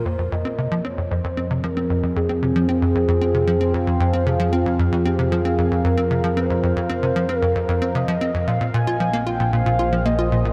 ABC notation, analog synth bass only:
X:1
M:4/4
L:1/16
Q:1/4=114
K:Fm
V:1 name="Analog synth bass" clef=bass
F,, F,, F,, C C, F, C F,, F,, F,, C C, F, C F,, F,, | F,, C C, F, C F,, F,, F,, C C, F, C F,, F,, F,, C | C, F, C F,, F,, F,, C C, F, C F,, F,, F,, C C, F, | C F,, F,, F,, C C, F, C F,, F,, F,, C C, F, C F,, |
B,, B,, B,, F F, B, F B,, B,, B,, F F, B, F B,, B,, |]